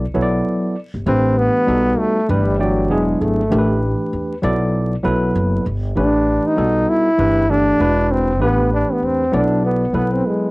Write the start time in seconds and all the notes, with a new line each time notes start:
0.14 B1 F#3 B3 E4 A4 C#5
0.22 D5
0.94 G1
1.06 A1 E3 A3 C4 D4 G4 B4
1.38 B3
1.67 B1 G3 B3 D#4 F#4 A4
1.99 A3
2.28 G1 E3 G3 A3 D4 G4 B4
2.59 E3 F#3 A3 D4 D5 G5
2.89 E1 F#3 G#3 B3 D4 E4 G#4
3.21 G#1 A3
3.50 A1 E3 A3 D4 G4 A#4
3.58 B4
4.13 E2
4.42 B1 F#3 B3 E4 A4 D5
5.03 B1 F#3 B3 E4 A4 B4
5.35 F#1
5.66 G1
5.95 A1 E3 A3 D4 G4 B4
6.47 D#4
6.56 B1 G3 B3 D#4 F#4 A4
6.89 E4
7.18 G1 E3 A3 D4 G4 B4
7.49 E3 A3 D4 G4 A4
7.79 E1 G#3 D4 E4 F#4 B4
8.11 C4
8.40 A1 E3 A3 B3 D4 G4 B4
8.74 D4
8.92 B3
9.02 E2 C4
9.32 B1 F#3 B3 D4 E4 A4 D5
9.65 B3
9.93 B1 F#3 B3 E4 A4 B4
10.14 C4
10.27 G#3